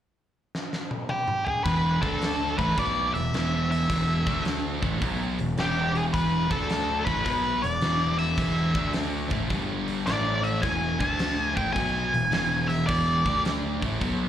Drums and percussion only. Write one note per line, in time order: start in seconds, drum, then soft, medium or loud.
0.55 snare medium
0.73 snare medium
0.91 high tom medium
1.09 high tom medium
1.28 mid tom medium
1.47 floor tom medium
1.65 kick loud
1.65 open hi-hat medium
2.03 kick loud
2.03 open hi-hat soft
2.22 snare loud
2.22 open hi-hat medium
2.59 kick loud
2.59 open hi-hat soft
2.78 kick medium
2.78 open hi-hat medium
3.15 open hi-hat soft
3.34 snare loud
3.34 open hi-hat medium
3.72 open hi-hat soft
3.90 kick loud
3.90 open hi-hat medium
4.27 kick loud
4.27 open hi-hat soft
4.45 snare loud
4.45 open hi-hat medium
4.83 kick loud
4.83 open hi-hat soft
5.02 kick loud
5.02 open hi-hat medium
5.39 open hi-hat soft
5.58 snare loud
5.58 open hi-hat medium
5.95 open hi-hat soft
6.14 kick loud
6.14 open hi-hat medium
6.51 kick loud
6.51 open hi-hat soft
6.70 snare loud
6.70 open hi-hat medium
7.07 kick loud
7.07 open hi-hat soft
7.25 kick loud
7.25 open hi-hat medium
7.64 open hi-hat soft
7.81 snare loud
7.81 open hi-hat medium
8.19 open hi-hat soft
8.38 kick loud
8.38 open hi-hat medium
8.74 kick loud
8.74 open hi-hat soft
8.93 snare loud
8.93 open hi-hat medium
9.30 kick loud
9.30 open hi-hat soft
9.50 kick medium
9.50 open hi-hat medium
9.88 open hi-hat soft
10.07 snare loud
10.07 open hi-hat medium
10.44 open hi-hat soft
10.63 kick loud
10.63 open hi-hat medium
11.00 kick loud
11.00 open hi-hat soft
11.19 snare loud
11.19 open hi-hat medium
11.57 kick loud
11.57 open hi-hat soft
11.76 kick loud
11.76 open hi-hat medium
12.14 open hi-hat soft
12.32 snare loud
12.32 open hi-hat medium
12.70 open hi-hat soft
12.89 kick loud
12.89 open hi-hat medium
13.26 kick medium
13.26 open hi-hat soft
13.45 snare loud
13.45 open hi-hat medium
13.82 kick medium
13.82 open hi-hat medium
14.01 kick loud
14.01 open hi-hat medium